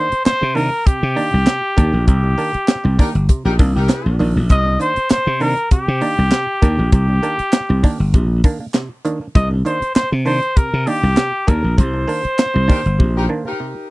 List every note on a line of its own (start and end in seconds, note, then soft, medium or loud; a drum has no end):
0.00 0.23 C5 loud
0.12 muted slap bass stroke soft
0.12 closed hi-hat medium
0.25 0.32 A#3 soft
0.25 0.32 D4 soft
0.25 0.57 C5 loud
0.25 muted slap bass stroke soft
0.25 snare loud
0.25 clap medium
0.25 closed hi-hat medium
0.41 0.54 C3 medium
0.41 0.68 C3 medium
0.55 0.70 D#3 medium
0.55 0.70 A#3 medium
0.55 0.70 D4 medium
0.55 0.88 A#4 loud
0.55 open hi-hat medium
0.86 1.00 C3 medium
0.86 2.07 G4 loud
0.86 muted slap bass stroke soft
0.86 kick loud
0.86 closed hi-hat medium
1.03 1.15 C3 medium
1.16 1.30 D#3 medium
1.16 1.30 A#3 medium
1.16 1.31 D4 medium
1.16 open hi-hat medium
1.32 1.45 C2 medium
1.32 1.38 A#3 soft
1.32 1.38 D4 medium
1.46 1.61 C3 medium
1.46 snare loud
1.46 clap medium
1.46 closed hi-hat medium
1.77 1.91 D#2 medium
1.77 1.91 D#3 medium
1.77 1.91 A#3 medium
1.77 1.91 D4 medium
1.77 kick medium
1.77 closed hi-hat medium
1.93 2.08 A#1 medium
1.93 1.99 A#3 soft
1.93 1.99 D4 soft
2.08 2.34 C2 loud
2.08 2.22 C3 medium
2.08 3.25 G4 medium
2.08 kick loud
2.08 closed hi-hat medium
2.24 2.29 A#3 soft
2.24 2.29 D4 soft
2.38 2.52 D#3 medium
2.38 2.52 A#3 medium
2.38 2.52 D4 medium
2.38 open hi-hat medium
2.54 muted slap bass stroke soft
2.54 closed hi-hat medium
2.68 2.74 A#3 soft
2.68 2.75 D4 soft
2.68 snare loud
2.68 clap medium
2.68 closed hi-hat medium
2.84 2.97 C2 medium
2.84 2.96 C3 medium
2.99 3.13 D#3 medium
2.99 3.13 A#3 medium
2.99 3.13 D4 medium
2.99 3.09 D#4 medium
2.99 3.09 G4 medium
2.99 3.09 A#4 medium
2.99 kick medium
2.99 open hi-hat medium
3.15 3.27 G1 medium
3.15 closed hi-hat soft
3.29 3.43 C3 medium
3.29 kick medium
3.29 closed hi-hat medium
3.45 3.60 A#1 medium
3.45 3.54 D#4 medium
3.45 3.54 G4 medium
3.45 3.54 A#4 medium
3.59 3.73 C2 loud
3.59 3.73 D#3 medium
3.59 3.73 A#3 medium
3.59 3.73 D4 medium
3.59 kick loud
3.59 open hi-hat medium
3.75 3.88 C2 medium
3.75 3.81 A#3 soft
3.75 3.81 D4 soft
3.75 4.18 D#4 medium
3.75 4.18 G4 medium
3.75 4.18 A#4 loud
3.89 4.03 C3 medium
3.89 snare loud
3.89 clap medium
3.89 closed hi-hat medium
4.06 4.18 A#1 medium
4.19 4.34 A#1 medium
4.19 4.34 D#3 medium
4.19 4.34 A#3 medium
4.19 4.34 D4 medium
4.19 open hi-hat medium
4.36 4.50 A#1 medium
4.36 4.41 A#3 soft
4.36 4.41 D4 soft
4.49 4.76 C2 loud
4.49 4.64 C3 medium
4.49 4.79 D#5 loud
4.49 kick medium
4.49 closed hi-hat medium
4.66 4.72 A#3 soft
4.66 4.72 D4 soft
4.80 4.94 D#3 medium
4.80 4.94 A#3 medium
4.80 4.94 D4 medium
4.80 5.09 C5 loud
4.80 closed hi-hat medium
4.96 muted slap bass stroke soft
4.96 closed hi-hat soft
5.10 5.17 A#3 soft
5.10 5.17 D4 soft
5.10 5.44 C5 loud
5.10 muted slap bass stroke soft
5.10 snare loud
5.10 clap loud
5.10 closed hi-hat medium
5.26 5.39 C3 medium
5.26 5.53 C3 medium
5.40 5.55 D#3 medium
5.40 5.55 A#3 medium
5.40 5.55 D4 medium
5.40 5.71 A#4 loud
5.40 open hi-hat medium
5.57 closed hi-hat medium
5.71 5.85 C3 medium
5.71 6.89 G4 loud
5.71 muted slap bass stroke medium
5.71 kick medium
5.71 closed hi-hat medium
5.88 6.00 C3 loud
6.01 6.15 D#3 medium
6.01 6.16 A#3 medium
6.01 6.16 D4 medium
6.01 open hi-hat medium
6.18 6.30 C2 medium
6.18 6.23 A#3 soft
6.18 6.23 D4 soft
6.32 6.46 C3 soft
6.32 snare medium
6.32 clap medium
6.32 closed hi-hat medium
6.62 6.76 D#2 medium
6.62 6.76 D#3 medium
6.62 6.76 A#3 medium
6.62 6.76 D4 medium
6.62 kick medium
6.62 closed hi-hat medium
6.78 6.91 A#1 loud
6.78 6.84 A#3 soft
6.78 6.84 D4 soft
6.92 7.19 C2 loud
6.92 7.07 C3 medium
6.92 8.10 G4 loud
6.92 kick loud
6.92 closed hi-hat medium
7.09 7.14 A#3 soft
7.09 7.14 D4 soft
7.23 7.37 D#3 medium
7.23 7.37 A#3 medium
7.23 7.37 D4 medium
7.23 closed hi-hat medium
7.39 muted slap bass stroke soft
7.39 closed hi-hat medium
7.53 7.60 A#3 soft
7.53 7.60 D4 soft
7.53 snare loud
7.53 clap medium
7.53 closed hi-hat medium
7.69 7.82 C2 loud
7.69 7.82 C3 medium
7.83 7.97 D#3 medium
7.83 7.98 A#3 medium
7.83 7.98 D4 medium
7.83 kick medium
7.83 open hi-hat medium
8.00 8.12 G1 loud
8.14 8.40 A#1 loud
8.14 8.28 C3 medium
8.14 kick medium
8.14 closed hi-hat medium
8.44 8.58 D#3 medium
8.44 8.58 A#3 medium
8.44 8.58 D4 medium
8.44 kick loud
8.44 open hi-hat medium
8.60 8.66 A#3 soft
8.60 8.66 D4 soft
8.74 8.88 C3 medium
8.74 snare loud
8.74 clap medium
8.74 closed hi-hat medium
9.05 9.19 D#3 medium
9.05 9.19 A#3 medium
9.05 9.19 D4 medium
9.05 closed hi-hat medium
9.21 9.27 A#3 soft
9.21 9.27 D4 soft
9.35 9.62 C2 loud
9.35 9.49 C3 medium
9.35 9.49 D#5 loud
9.35 kick loud
9.35 closed hi-hat medium
9.51 9.57 A#3 soft
9.51 9.57 D4 soft
9.65 9.79 D#3 medium
9.65 9.79 A#3 medium
9.65 9.80 D4 medium
9.65 9.94 C5 loud
9.65 closed hi-hat medium
9.82 muted slap bass stroke soft
9.82 closed hi-hat soft
9.95 10.02 A#3 soft
9.95 10.02 D4 soft
9.95 10.09 C5 loud
9.95 muted slap bass stroke soft
9.95 snare loud
9.95 clap medium
9.95 closed hi-hat medium
10.12 10.24 C3 medium
10.12 10.38 C3 medium
10.25 10.40 D#3 medium
10.25 10.40 A#3 medium
10.25 10.40 D4 medium
10.25 10.59 C5 loud
10.25 open hi-hat medium
10.43 closed hi-hat soft
10.56 10.71 C3 medium
10.56 10.89 A#4 medium
10.56 muted slap bass stroke soft
10.56 kick loud
10.56 closed hi-hat medium
10.73 10.86 C3 medium
10.87 11.01 D#3 medium
10.87 11.01 A#3 medium
10.87 11.01 D4 medium
10.87 11.50 G4 loud
10.87 open hi-hat medium
11.03 11.16 C2 medium
11.03 11.09 A#3 soft
11.03 11.09 D4 soft
11.17 11.31 C3 medium
11.17 snare loud
11.17 clap medium
11.17 closed hi-hat medium
11.47 11.62 D#2 medium
11.47 11.62 D#3 medium
11.47 11.62 A#3 medium
11.47 11.62 D4 medium
11.47 11.78 A#4 medium
11.47 kick loud
11.47 closed hi-hat medium
11.63 11.76 A#1 medium
11.63 11.69 A#3 soft
11.63 11.69 D4 soft
11.78 12.05 C2 loud
11.78 11.92 C3 medium
11.78 13.57 C5 loud
11.78 kick medium
11.78 closed hi-hat medium
11.94 12.00 A#3 soft
11.94 12.00 D4 soft
12.07 12.22 D#3 medium
12.07 12.22 A#3 medium
12.07 12.22 D4 medium
12.07 open hi-hat medium
12.25 muted slap bass stroke soft
12.25 closed hi-hat medium
12.38 12.45 A#3 soft
12.38 12.45 D4 soft
12.38 snare loud
12.38 clap medium
12.38 closed hi-hat medium
12.54 12.68 C2 medium
12.54 12.67 C3 medium
12.68 12.83 D#3 medium
12.68 12.83 A#3 medium
12.68 12.83 D4 medium
12.68 12.79 D#4 medium
12.68 12.79 G4 medium
12.68 12.79 A#4 medium
12.68 kick medium
12.68 open hi-hat medium
12.86 12.98 G1 medium
12.86 closed hi-hat soft
12.99 13.26 A#1 medium
12.99 13.13 C3 medium
12.99 kick medium
13.16 13.25 D#4 medium
13.16 13.25 G4 medium
13.16 13.25 A#4 medium
13.29 13.44 D#3 medium
13.29 13.44 A#3 medium
13.29 13.44 D4 medium
13.45 13.52 A#3 soft
13.45 13.51 D4 soft
13.45 13.89 D#4 medium
13.45 13.88 G4 medium
13.45 13.88 A#4 medium
13.60 13.74 C3 soft